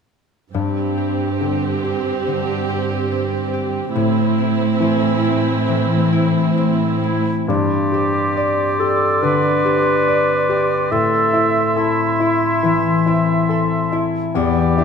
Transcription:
0.53 cello section G2, harp G2, grand piano G2, viola section C4 G4
0.97 harp G4
1.41 grand piano D3, harp C4
1.84 harp G4
2.27 harp D3
2.69 harp G4
3.12 harp C4
3.54 harp G4
3.94 cello section A2, grand piano A2, harp A2, viola section C4 E4
4.38 harp E4
4.80 grand piano E3, harp C4
5.24 harp E4
5.68 harp E3
6.13 harp E4
6.58 harp C4
7.02 clarinet E4, harp E4
7.48 grand piano G2, harp G2, clarinet G4, oboe D5, flute C6
7.92 harp C4, grand piano G4
8.36 grand piano D5, harp D5
8.79 grand piano G4, harp G4, clarinet A4
9.22 grand piano D3, harp D3, clarinet B4
9.65 harp C4, grand piano G4
10.07 grand piano D5, harp D5
10.49 grand piano G4, harp G4
10.91 grand piano A2, harp A2, clarinet A4, oboe E5, flute C6
11.33 harp C4, grand piano E4
11.76 clarinet E4, grand piano A4, harp A4
12.20 grand piano E4, harp E4
12.63 grand piano E3, harp E3
13.06 harp C4, grand piano E4
13.49 grand piano A4, harp A4
13.92 grand piano E4, harp E4
14.34 grand piano E2, harp E2, clarinet G4, oboe D5, flute G5
14.77 harp D4, grand piano E4

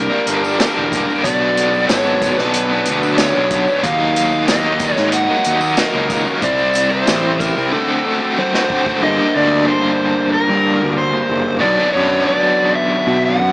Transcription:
Already playing: overdriven electric guitar D3 G3, tonewheel organ D4 G4 A#4 A#5, electric slide guitar A#4
0.10 overdriven electric guitar G3 A#3 D4
0.26 picked electric bass G1, overdriven electric guitar D3 G3 A#3 D4, closed hi-hat, tambourine
0.42 overdriven electric guitar G3 A#3 D4, tambourine
0.59 overdriven electric guitar G2 D3 G3 A#3 D4, electric slide guitar A#4, snare, closed hi-hat, tambourine
0.77 picked electric bass E1
0.91 overdriven electric guitar D3 G3 A#3 D4, kick, closed hi-hat, tambourine
1.08 overdriven electric guitar G3 A#3 D4, tambourine
1.24 picked electric bass B1, overdriven electric guitar B2 F#3 B3 D4, tonewheel organ F#4 B4 C#6, electric slide guitar D5, kick, closed hi-hat, tambourine
1.57 overdriven electric guitar B2 F#3 B3 D4, closed hi-hat
1.74 overdriven electric guitar F#3 B3 D4, tambourine
1.88 picked electric bass G#1, overdriven electric guitar B2 F#3, electric slide guitar C#5, snare, closed hi-hat, tambourine
1.93 overdriven electric guitar B3 D4
2.22 kick, closed hi-hat, tambourine
2.37 picked electric bass B1, overdriven electric guitar B3 D4, electric slide guitar B4, snare, tambourine
2.42 overdriven electric guitar F#3
2.54 closed hi-hat, tambourine
2.71 overdriven electric guitar F#3 B3 D4
2.85 picked electric bass D2, overdriven electric guitar B2 F#3, closed hi-hat, tambourine
2.89 overdriven electric guitar B3 D4
3.03 overdriven electric guitar F#3 B3 D4, tambourine
3.18 overdriven electric guitar B2 F#3 B3, electric slide guitar C#5, snare, closed hi-hat, tambourine
3.22 overdriven electric guitar D4
3.36 picked electric bass B1
3.51 overdriven electric guitar B2 F#3 B3 D4, kick, closed hi-hat
3.67 overdriven electric guitar F#3 B3 D4, tambourine
3.83 picked electric bass D#2, overdriven electric guitar D#3 F#3 A#3 D#4, tonewheel organ A#4 D#5, electric slide guitar F5, kick, closed hi-hat, tambourine
4.16 overdriven electric guitar D#3 F#3 A#3 D#4, closed hi-hat, tambourine
4.32 overdriven electric guitar F#3 A#3 D#4, tambourine
4.48 picked electric bass D#2, overdriven electric guitar D#3 F#3 A#3 D#4, electric slide guitar D#5, snare, closed hi-hat, tambourine
4.79 kick, closed hi-hat, tambourine
4.94 overdriven electric guitar A#3 D#4, electric slide guitar C#5, snare
4.98 picked electric bass G#2, overdriven electric guitar F#3
5.12 electric slide guitar F#5, closed hi-hat, tambourine
5.28 overdriven electric guitar F#3 A#3 D#4
5.44 picked electric bass D#2, overdriven electric guitar D#3 F#3 A#3 D#4, closed hi-hat, tambourine
5.61 overdriven electric guitar F#3 A#3 D#4, tambourine
5.77 overdriven electric guitar D#3 F#3 A#3 D#4, electric slide guitar A#4, snare, closed hi-hat, tambourine
5.94 picked electric bass C#2
6.10 overdriven electric guitar D#3 F#3 A#3 D#4, kick, closed hi-hat, tambourine
6.27 overdriven electric guitar F#3 A#3 D#4, tambourine
6.41 picked electric bass C2, overdriven electric guitar C3 G3 C4 E4, tonewheel organ C5 E5 G5 E6, electric slide guitar D5, kick, closed hi-hat, tambourine
6.58 tambourine
6.74 overdriven electric guitar C3 G3 C4 E4, closed hi-hat, tambourine
6.90 overdriven electric guitar G3 C4 E4, electric slide guitar C5, tambourine
7.06 picked electric bass A1, overdriven electric guitar C3 G3 C4 E4, snare, closed hi-hat, tambourine
7.39 electric slide guitar A#4, kick, closed hi-hat, tambourine
7.57 picked electric bass C2, overdriven electric guitar G3 C4 E4, tambourine
7.72 overdriven electric guitar D3 A3 C4 F#4, electric slide guitar A4, tonewheel organ C5 F#5 A5 D6
7.89 overdriven electric guitar A3 C4 F#4
8.04 overdriven electric guitar D3 A3 C4 F#4
8.21 overdriven electric guitar A3 C4 F#4
8.37 overdriven electric guitar D3 A3 C4 F#4, electric slide guitar C5, high tom
8.54 snare
8.70 overdriven electric guitar D3 A3 C4 F#4, kick
8.86 overdriven electric guitar A3 C4 F#4, kick
9.02 picked electric bass G1, overdriven electric guitar G2 D3 G3 A#3 D4, tonewheel organ D3 G3 A#3 A#4, electric slide guitar D#5
9.36 picked electric bass D2, electric slide guitar D5
9.68 electric slide guitar C5
10.33 electric slide guitar A#4
10.50 picked electric bass G2
10.82 picked electric bass D2
10.98 electric slide guitar C5
11.30 picked electric bass F#1
11.59 picked electric bass B1, overdriven electric guitar B2 F#3 B3 D4, tonewheel organ F#3 B3 B4, electric slide guitar D5
11.93 picked electric bass F#2, electric slide guitar C#5
12.27 electric slide guitar D5
12.76 electric slide guitar E5
13.07 picked electric bass B2
13.26 electric slide guitar F#5
13.40 picked electric bass F#2

